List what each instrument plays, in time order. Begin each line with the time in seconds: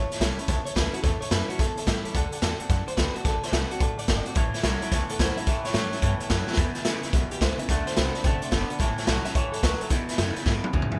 Already playing: steel-string acoustic guitar A2, clean electric guitar C#5
0.11 upright piano C#5 E5 A5, muted upright bass stroke, snare, closed hi-hat
0.20 upright bass B1, steel-string acoustic guitar E3 G3 C#4 E4, upright piano C#5 E5 A5, snare, closed hi-hat
0.38 steel-string acoustic guitar C#4 E4, upright piano C#5 E5 A5, muted upright bass stroke, closed hi-hat
0.48 upright bass C#2, steel-string acoustic guitar E2, upright piano C#5 E5 A5, kick, snare, closed hi-hat
0.65 clean electric guitar C#5, upright piano C#5 E5 A5, muted upright bass stroke, closed hi-hat
0.75 upright bass D2, steel-string acoustic guitar E3 G3 C#4 E4, clean electric guitar B4, upright piano C#5 E5 A5, kick, snare, closed hi-hat
0.93 steel-string acoustic guitar C#4 E4, clean electric guitar F#4, upright piano C#5 E5 A5, closed hi-hat
1.02 upright bass E2, steel-string acoustic guitar A2, clean electric guitar A4, upright piano C#5 E5 A5, kick, snare, closed hi-hat
1.21 clean electric guitar C#5, upright piano C#5 E5 A5, muted upright bass stroke, closed hi-hat
1.31 upright bass F#2, steel-string acoustic guitar E3 G3 C#4 E4, clean electric guitar B4, upright piano C#5 E5 A5, snare, closed hi-hat
1.48 clean electric guitar F#4, upright piano C#5 E5 A5, muted upright bass stroke, closed hi-hat
1.59 steel-string acoustic guitar E2, upright bass G2, clean electric guitar A4, upright piano C#5 E5 A5, kick, snare, closed hi-hat
1.76 clean electric guitar A4, upright piano C#5 E5 A5, muted upright bass stroke, closed hi-hat
1.86 upright bass A2, steel-string acoustic guitar E3 G3 C#4 E4, upright piano C#5 E5 A5, kick, snare, closed hi-hat
2.04 upright piano C#5 E5 A5, muted upright bass stroke, closed hi-hat
2.14 upright bass D2, steel-string acoustic guitar D3, upright piano D5 F#5 A5, kick, closed hi-hat
2.32 upright piano D5 F#5 A5, muted upright bass stroke, closed hi-hat
2.42 upright bass E2, steel-string acoustic guitar D3 A3 C4 F#4, upright piano D5 F#5 A5, snare, closed hi-hat
2.60 steel-string acoustic guitar C4 F#4, upright piano D5 F#5 A5, muted upright bass stroke, closed hi-hat
2.69 upright bass F#2, steel-string acoustic guitar A2, upright piano D5 F#5 A5, kick, snare, closed hi-hat
2.87 clean electric guitar C5, upright piano D5 F#5 A5, muted upright bass stroke, closed hi-hat
2.97 upright bass D2, steel-string acoustic guitar D3 A3 C4 F#4, clean electric guitar B4, upright piano D5 F#5 A5, kick, snare, closed hi-hat
3.15 steel-string acoustic guitar C4 F#4, clean electric guitar F#4, upright piano D5 F#5 A5, muted upright bass stroke, closed hi-hat
3.24 upright bass A1, steel-string acoustic guitar D3, clean electric guitar A4, upright piano D5 F#5 A5, kick, snare, closed hi-hat
3.42 clean electric guitar C5, upright piano D5 F#5 A5, snare, closed hi-hat
3.51 upright bass C2, steel-string acoustic guitar D3 A3 C4 F#4, clean electric guitar B4, upright piano D5 F#5 A5, snare, closed hi-hat
3.70 steel-string acoustic guitar C4 F#4, clean electric guitar F#4, upright piano D5 F#5 A5, closed hi-hat
3.79 steel-string acoustic guitar A2, clean electric guitar A4, upright piano D5 F#5 A5, kick, closed hi-hat
3.97 upright piano D5 F#5 A5, clean electric guitar D5, closed hi-hat
4.08 upright bass G1, steel-string acoustic guitar D3 A3 C4 F#4, upright piano D5 F#5 A5, kick, snare, closed hi-hat
4.26 steel-string acoustic guitar C4 F#4, upright piano D5 F#5 A5, muted upright bass stroke, closed hi-hat
4.35 upright bass A1, steel-string acoustic guitar A2, clean electric guitar A2 E3, upright piano C#5 E5 A5, kick, closed hi-hat
4.54 upright piano C#5 E5 B5, snare, closed hi-hat
4.63 upright bass B1, clean electric guitar A2 F#3, steel-string acoustic guitar E3 G3 C#4 E4, upright piano C#5 E5 A5, snare, closed hi-hat
4.82 steel-string acoustic guitar C#4 E4, upright piano C#5 E5 A5, muted upright bass stroke, closed hi-hat
4.92 upright bass C#2, steel-string acoustic guitar E2, clean electric guitar A2 E3, upright piano C#5 E5 A5, kick, snare, closed hi-hat
5.09 clean electric guitar A4, upright piano C#5 E5 F#5, muted upright bass stroke, closed hi-hat
5.19 upright bass D2, clean electric guitar A2 F#3 C5, steel-string acoustic guitar E3 G3 C#4 E4, upright piano C#5 E5 A5, kick, snare, closed hi-hat
5.37 steel-string acoustic guitar C#4 E4, upright piano C#5 E5 A5, clean electric guitar E5, closed hi-hat
5.47 steel-string acoustic guitar A2, clean electric guitar A2 E3, upright piano C#5 E5 A5, kick, snare, closed hi-hat
5.65 clean electric guitar C#5, upright piano C#5 E5 A5, snare, closed hi-hat
5.73 upright bass A2, clean electric guitar A2 F#3, steel-string acoustic guitar E3 G3 C#4 E4, upright piano C#5 A5, snare, closed hi-hat
5.91 steel-string acoustic guitar C#4 E4, upright piano C#5 E5 A5, muted upright bass stroke, snare, closed hi-hat
6.02 steel-string acoustic guitar E2, upright bass G2, clean electric guitar A2 E3, upright piano C#5 E5 A5, kick, closed hi-hat
6.20 upright piano C#5 E5 A5 B5, muted upright bass stroke, closed hi-hat
6.24 upright piano A5
6.29 upright bass F#2, clean electric guitar A2 F#3, steel-string acoustic guitar E3 G3 C#4 E4, upright piano C#5 E5 G5 A5, kick, snare, closed hi-hat
6.47 steel-string acoustic guitar C#4 E4, upright piano C#5 E5 A5, muted upright bass stroke, snare
6.53 upright bass E2, snare, closed hi-hat
6.57 clean electric guitar E2 B2, steel-string acoustic guitar E2, upright piano B4 E5 G#5, kick
6.74 upright piano B4 E5 G#5, muted upright bass stroke, snare, closed hi-hat
6.84 upright bass D2, clean electric guitar E2 C#3, steel-string acoustic guitar D3 G#3 B3 E4, upright piano B4 E5 G#5, snare, closed hi-hat
7.03 steel-string acoustic guitar B3 E4, upright piano B4 E5 G#5, muted upright bass stroke, snare, closed hi-hat
7.13 upright bass B1, clean electric guitar E2 B2, steel-string acoustic guitar B2, upright piano B4 E5 B5, kick, snare, closed hi-hat
7.30 clean electric guitar G4, upright piano B4 E5 G#5, muted upright bass stroke, closed hi-hat
7.41 upright bass C#2, clean electric guitar E2 C#3 C5, steel-string acoustic guitar D3 G#3 B3 E4, upright piano B4 E5 G#5, kick, snare, closed hi-hat
7.59 steel-string acoustic guitar B3 E4, upright piano B4 E5 G#5, clean electric guitar E5, muted upright bass stroke, closed hi-hat
7.69 upright bass D2, steel-string acoustic guitar D3, clean electric guitar D3 A3, upright piano D5 F#5 A5, kick, snare, closed hi-hat
7.86 clean electric guitar C5, upright piano D5 F#5 A5, snare, closed hi-hat
7.96 upright bass C2, steel-string acoustic guitar D3 A3 C4 F#4, clean electric guitar D3 B3, upright piano F#5, snare, closed hi-hat
8.14 steel-string acoustic guitar C4 F#4, upright piano D5 F#5 A5, snare, closed hi-hat
8.24 upright bass A1, steel-string acoustic guitar C3, clean electric guitar D3 A3, upright piano D5 F#5 A5, kick, snare, closed hi-hat
8.42 upright piano D5 E5 F#5 C6, muted upright bass stroke, closed hi-hat
8.51 upright bass F#1, steel-string acoustic guitar B2, clean electric guitar D3 B3, upright piano D5 F#5 A5, kick, snare, closed hi-hat
8.69 upright piano D5 F#5 A5, muted upright bass stroke, closed hi-hat
8.79 upright bass A1, steel-string acoustic guitar A2, clean electric guitar A2 E3, upright piano C#5 E5 A5, kick, snare, closed hi-hat
8.98 upright piano C#5 E5 A5, snare, closed hi-hat
9.07 upright bass B1, clean electric guitar A2 F#3, steel-string acoustic guitar E3 G3 C#4 E4, upright piano C#5 E5 A5, snare, closed hi-hat
9.25 steel-string acoustic guitar C#4 E4, upright piano C#5 E5 A5, clean electric guitar E5, muted upright bass stroke, snare, closed hi-hat
9.35 upright bass C#2, steel-string acoustic guitar G2, clean electric guitar A2 E3 C#5, upright piano C#5 E5 A5, kick, closed hi-hat
9.52 clean electric guitar A4, upright piano C#5 E5 A5, closed hi-hat
9.63 upright bass D2, steel-string acoustic guitar F#2, clean electric guitar A2 F#3 B4, upright piano C#5 A5, kick, snare, closed hi-hat
9.80 clean electric guitar A4, upright piano C#5 E5 A5, muted upright bass stroke, closed hi-hat
9.90 clean electric guitar E2 B2 E4, steel-string acoustic guitar E2, upright piano B4 E5 G#5, kick, snare, closed hi-hat
10.08 upright piano B4 E5 G#5, muted upright bass stroke, snare, closed hi-hat
10.18 clean electric guitar E2 C#3, upright bass F#2, steel-string acoustic guitar D3 G#3 B3 E4, upright piano G#5, snare, closed hi-hat
10.36 steel-string acoustic guitar B3 E4, upright piano B4 E5 G#5, muted upright bass stroke, snare, closed hi-hat
10.46 clean electric guitar E2 B2, steel-string acoustic guitar F#2, upright bass G#2, upright piano B4 E5 G#5, kick, snare
10.63 upright piano B4 E5 G#5, muted upright bass stroke, high tom
10.73 upright bass E2, clean electric guitar E2 C#3, steel-string acoustic guitar G#2, upright piano B4 E5 G#5, kick, mid tom
10.82 mid tom
10.90 upright piano B4 E5 G#5 B5, muted upright bass stroke, floor tom